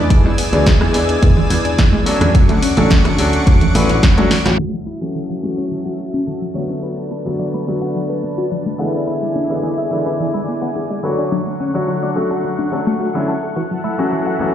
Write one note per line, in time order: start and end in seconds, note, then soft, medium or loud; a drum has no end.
0.00 0.16 E2 medium
0.00 0.49 E3 medium
0.00 0.49 G#3 medium
0.00 0.49 B3 medium
0.00 0.50 D4 medium
0.00 0.50 G#4 medium
0.10 0.24 E3 loud
0.10 2.32 D5 medium
0.10 2.32 G#5 medium
0.10 2.32 E6 medium
0.10 kick loud
0.10 closed hi-hat medium
0.25 0.33 E2 loud
0.25 0.30 G#3 medium
0.38 0.47 B3 medium
0.38 open hi-hat loud
0.52 0.70 D2 medium
0.52 0.91 E3 medium
0.52 0.91 G#3 medium
0.52 0.91 B3 medium
0.52 0.65 D4 medium
0.52 0.91 D4 medium
0.52 0.92 G#4 medium
0.52 closed hi-hat medium
0.52 high conga medium
0.66 0.75 E3 medium
0.66 kick loud
0.66 snare loud
0.66 closed hi-hat medium
0.81 1.15 E2 medium
0.81 0.93 G#3 medium
0.81 cross-stick medium
0.93 2.03 E3 medium
0.93 2.03 G#3 medium
0.93 2.03 B3 medium
0.93 1.08 B3 medium
0.93 2.03 D4 medium
0.93 2.04 G#4 medium
0.93 open hi-hat loud
1.09 1.17 D4 medium
1.09 closed hi-hat medium
1.22 1.32 E1 medium
1.22 1.36 E3 medium
1.22 kick loud
1.22 closed hi-hat medium
1.37 1.42 G#3 medium
1.37 low conga medium
1.50 2.07 E2 loud
1.50 1.59 B3 medium
1.50 open hi-hat medium
1.65 1.73 D4 medium
1.65 closed hi-hat medium
1.78 1.87 E3 medium
1.78 kick loud
1.78 snare loud
1.78 closed hi-hat medium
1.93 2.01 G#3 loud
1.93 high conga medium
2.06 2.16 D2 medium
2.06 2.73 F#3 medium
2.06 2.73 A3 medium
2.06 2.20 B3 medium
2.06 2.74 C#4 medium
2.06 2.74 D4 medium
2.06 2.74 A4 medium
2.06 open hi-hat loud
2.21 2.30 E2 medium
2.21 2.33 D4 loud
2.21 cross-stick medium
2.21 closed hi-hat medium
2.21 high conga medium
2.21 low conga medium
2.34 2.48 F#3 loud
2.34 4.57 F#5 medium
2.34 4.57 C#6 medium
2.34 4.57 D6 medium
2.34 muted slap bass stroke soft
2.34 kick loud
2.34 closed hi-hat medium
2.49 2.58 D2 loud
2.49 2.54 A3 medium
2.49 closed hi-hat soft
2.62 2.71 C#4 medium
2.62 open hi-hat loud
2.77 2.95 A1 medium
2.77 3.15 F#3 medium
2.77 3.15 A3 medium
2.77 3.16 C#4 medium
2.77 2.90 D4 medium
2.77 3.16 D4 medium
2.77 3.16 A4 medium
2.77 closed hi-hat medium
2.77 high conga medium
2.91 3.00 F#3 medium
2.91 kick loud
2.91 snare loud
2.91 closed hi-hat medium
3.05 3.39 D2 loud
3.05 3.18 A3 medium
3.05 cross-stick medium
3.05 closed hi-hat soft
3.19 3.72 F#3 medium
3.19 3.72 A3 medium
3.19 3.72 C#4 medium
3.19 3.32 C#4 medium
3.19 3.72 D4 medium
3.19 3.73 A4 medium
3.19 open hi-hat loud
3.33 3.41 D4 medium
3.33 closed hi-hat medium
3.47 3.56 D2 medium
3.47 3.60 F#3 medium
3.47 kick loud
3.47 closed hi-hat medium
3.61 3.66 A3 medium
3.61 closed hi-hat soft
3.61 low conga medium
3.75 3.84 A1 medium
3.75 4.14 F#3 medium
3.75 4.14 A3 medium
3.75 4.14 C#4 medium
3.75 4.14 D4 medium
3.75 3.84 A4 medium
3.75 4.14 B4 medium
3.75 open hi-hat loud
3.89 3.98 A1 loud
3.89 4.02 D4 medium
3.89 closed hi-hat medium
4.03 4.08 F#3 medium
4.03 kick loud
4.03 snare loud
4.03 closed hi-hat medium
4.17 4.31 F#3 medium
4.17 4.31 A3 medium
4.17 4.31 C#4 medium
4.17 4.22 D4 medium
4.17 4.31 D4 medium
4.17 4.31 F#4 loud
4.17 closed hi-hat soft
4.17 high tom soft
4.17 high conga medium
4.31 4.44 F#3 medium
4.31 muted slap bass stroke soft
4.31 snare medium
4.31 open hi-hat loud
4.46 4.54 A1 medium
4.46 4.51 F#3 loud
4.46 cross-stick medium
4.46 snare medium
4.46 closed hi-hat medium
4.46 high conga medium
4.46 low conga medium
4.59 4.72 E3 medium
4.59 6.81 F#4 medium
4.59 4.63 F#4 medium
4.59 6.81 E5 medium
4.59 6.81 A5 medium
4.74 4.79 F#3 medium
4.87 4.96 A3 medium
4.87 4.98 E4 medium
5.01 5.40 E3 medium
5.01 5.40 F#3 medium
5.01 5.40 A3 medium
5.01 5.14 C#4 medium
5.01 5.40 C#4 medium
5.01 5.40 F#4 medium
5.15 5.24 E3 medium
5.15 5.22 A4 medium
5.29 5.42 F#3 medium
5.29 5.36 F#5 medium
5.42 6.52 E3 medium
5.42 6.52 F#3 medium
5.42 6.52 A3 medium
5.42 5.57 A3 medium
5.42 6.52 C#4 medium
5.42 6.53 F#4 medium
5.57 5.66 C#4 medium
5.57 5.64 C#5 medium
5.71 5.85 E3 medium
5.85 5.91 F#3 medium
5.85 5.92 F#4 medium
5.99 6.08 A3 medium
6.14 6.20 C#4 medium
6.14 6.22 C#4 medium
6.27 6.36 E3 medium
6.27 6.34 A4 medium
6.42 6.50 F#3 medium
6.54 7.22 D3 medium
6.54 7.22 F#3 medium
6.54 7.22 A3 medium
6.54 6.68 A3 medium
6.54 7.23 B3 medium
6.54 7.23 F#4 medium
6.54 6.62 C#5 medium
6.70 6.82 C#4 loud
6.82 6.96 F#3 medium
6.82 9.05 D4 medium
6.82 9.05 B4 medium
6.82 6.87 B4 medium
6.82 9.05 A5 medium
6.98 7.03 A3 medium
7.11 7.20 B3 medium
7.11 7.22 A4 medium
7.25 7.64 D3 medium
7.25 7.64 F#3 medium
7.25 7.64 A3 medium
7.25 7.64 B3 medium
7.25 7.38 D4 medium
7.25 7.64 F#4 medium
7.39 7.48 F#3 medium
7.39 7.47 D5 medium
7.54 7.66 A3 medium
7.54 7.61 B5 medium
7.67 8.76 D3 medium
7.67 8.76 F#3 medium
7.67 8.76 A3 medium
7.67 7.81 B3 medium
7.67 8.77 B3 medium
7.67 8.77 F#4 medium
7.82 7.90 D4 medium
7.82 7.89 F#5 medium
7.95 8.08 F#3 medium
8.10 8.15 A3 medium
8.10 8.16 B4 medium
8.23 8.32 B3 medium
8.38 8.46 D4 medium
8.38 8.45 F#4 medium
8.51 8.60 F#3 medium
8.51 8.59 D5 medium
8.66 8.74 A3 medium
8.78 9.46 D3 medium
8.78 9.46 E3 medium
8.78 9.47 G#3 medium
8.78 8.93 B3 medium
8.78 9.47 B3 medium
8.78 9.47 E4 medium
8.78 8.87 F#5 medium
8.94 9.06 D4 loud
9.07 9.21 E3 medium
9.07 11.29 E4 medium
9.07 9.12 E4 medium
9.07 11.29 D5 medium
9.07 11.29 G#5 medium
9.22 9.27 G#3 medium
9.35 9.44 B3 medium
9.35 9.46 D4 medium
9.50 9.88 D3 medium
9.50 9.88 E3 medium
9.50 9.88 G#3 medium
9.50 9.89 B3 medium
9.50 9.62 D4 medium
9.50 9.89 E4 medium
9.63 9.73 E3 medium
9.63 9.71 G#4 medium
9.78 9.91 G#3 medium
9.78 9.85 E5 medium
9.91 11.00 D3 medium
9.91 11.00 E3 medium
9.91 11.01 G#3 medium
9.91 10.05 B3 medium
9.91 11.01 B3 medium
9.91 11.01 E4 medium
10.06 10.15 D4 medium
10.06 10.13 B4 medium
10.20 10.33 E3 medium
10.34 10.39 G#3 medium
10.34 10.41 E4 medium
10.48 10.57 B3 medium
10.62 10.69 B3 medium
10.62 10.71 D4 medium
10.76 10.85 E3 medium
10.76 10.83 G#4 medium
10.90 10.99 G#3 medium
11.03 11.70 D3 medium
11.03 11.71 F#3 medium
11.03 11.71 A3 medium
11.03 11.17 B3 medium
11.03 11.72 F#4 medium
11.03 11.11 B4 medium
11.03 11.71 C#5 medium
11.18 11.31 D4 loud
11.32 13.54 D3 medium
11.32 11.45 F#3 medium
11.32 11.36 D4 medium
11.32 13.54 F#5 medium
11.32 13.54 C#6 medium
11.47 11.51 A3 medium
11.60 11.71 C#4 medium
11.60 11.69 C#4 medium
11.74 12.12 D3 medium
11.74 12.13 F#3 medium
11.74 12.13 A3 medium
11.74 11.87 D4 medium
11.74 12.13 F#4 medium
11.74 12.13 C#5 medium
11.88 11.97 F#3 medium
11.88 11.95 F#4 medium
12.03 12.15 A3 medium
12.03 12.09 D5 medium
12.16 12.69 D3 medium
12.16 12.69 F#3 medium
12.16 12.69 A3 medium
12.16 12.29 C#4 medium
12.16 12.70 F#4 medium
12.31 12.39 D4 medium
12.31 12.37 A4 medium
12.44 12.57 F#3 medium
12.59 12.64 A3 medium
12.59 12.65 D4 medium
12.72 13.11 D3 medium
12.72 13.11 F#3 medium
12.72 13.11 A3 medium
12.72 12.81 C#4 loud
12.72 13.11 A4 medium
12.87 12.99 F#3 medium
12.87 12.93 A3 medium
13.00 13.07 F#4 medium
13.00 13.14 A4 medium
13.14 13.28 D3 medium
13.14 13.28 F#3 medium
13.14 13.28 A3 medium
13.14 13.23 A3 medium
13.14 13.28 C#4 medium
13.14 13.28 E4 medium
13.28 13.42 C#4 medium
13.28 13.35 A4 medium
13.43 13.51 A4 medium
13.56 13.70 E3 medium
13.56 14.54 E4 medium
13.56 13.60 F#4 medium
13.56 14.54 A4 medium
13.56 14.54 F#5 medium
13.71 13.76 F#3 medium
13.84 13.93 A3 medium
13.84 13.95 E4 medium
13.98 14.37 E3 medium
13.98 14.37 F#3 medium
13.98 14.37 A3 medium
13.98 14.37 C#4 medium
13.98 14.11 C#4 medium
13.98 14.37 F#4 medium
14.12 14.21 E3 medium
14.12 14.19 A4 medium
14.26 14.39 F#3 medium
14.26 14.33 F#5 medium
14.39 14.54 E3 medium
14.39 14.54 F#3 medium
14.39 14.54 A3 medium
14.39 14.54 C#4 medium
14.39 14.54 F#4 medium
14.39 high conga medium